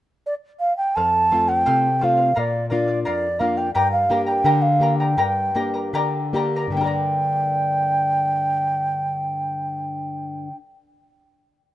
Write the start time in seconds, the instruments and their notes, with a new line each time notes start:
0.26 quena D5
0.60 quena F5
0.77 quena G5
0.95 nylon-string guitar F2, charango A4 C5 F5, quena A5
1.31 nylon-string guitar A3 C4 F4, charango A4 C5 F5
1.48 charango C5 F5, quena G5
1.66 nylon-string guitar C3, charango A4 C5 F5
1.99 nylon-string guitar A3 C4, charango A4 C5 F5, quena G5
2.03 nylon-string guitar F4, quena F5
2.17 charango C5 F5
2.35 nylon-string guitar A#2, charango A#4 D5 F5, quena D5 F5
2.70 nylon-string guitar A#3 D4 F4, charango A#4 D5 F5, quena D5
2.88 charango D5 F5
3.04 nylon-string guitar F2, charango A#4 D5 F5, quena D5
3.39 nylon-string guitar A#3 D4 F4, charango A#4 D5 F5, quena F5
3.57 charango D5 F5, quena G5
3.75 nylon-string guitar G2, charango G4 A#4 D5 G5 A#5, quena G5
3.92 quena F5
4.10 nylon-string guitar A#3 D4 G4, charango A#4 D5 G5 A#5
4.26 charango A#4 D5 A#5, quena G5
4.44 nylon-string guitar D3, charango G4 A#4 D5 G5 A#5
4.62 quena F5
4.80 nylon-string guitar A#3 D4 G4, charango A#4 D5 G5 A#5
4.98 charango A#4 D5 A#5, quena G5
5.17 nylon-string guitar G2, charango G4 A#4 D5 G5 A#5
5.55 nylon-string guitar A#3 D4 G4, charango A#4 D5 G5 A#5
5.74 charango A#4 D5 A#5
5.93 nylon-string guitar D3, charango G4 A#4 D5 G5 A#5
6.33 nylon-string guitar A#3 D4 G4, charango A#4 D5 G5 A#5
6.56 charango A#4 D5 A#5
6.67 nylon-string guitar G2 D3
6.72 nylon-string guitar A#3, charango G4, quena G5
6.77 nylon-string guitar D4, charango G5
6.81 nylon-string guitar G4, charango A#4 D5
6.86 nylon-string guitar D5, charango A#5